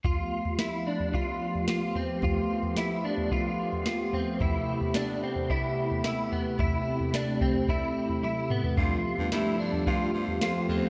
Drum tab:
SD |----o-------o---|----o-------o---|----o-------o---|----o-----------|
T1 |----------------|----------------|----------------|------------o---|
T2 |----------------|----------------|----------------|--------------o-|
FT |o--o---o---o--o-|o--o---o---o--o-|o--o---o---o--o-|o--o---oo--o---o|
BD |o-------o-------|o-------o-------|o-------o-------|o-----o-o-------|

SD |----o-------o---|
T1 |----------------|
T2 |----------------|
FT |o--o---o---o--o-|
BD |o-------o-------|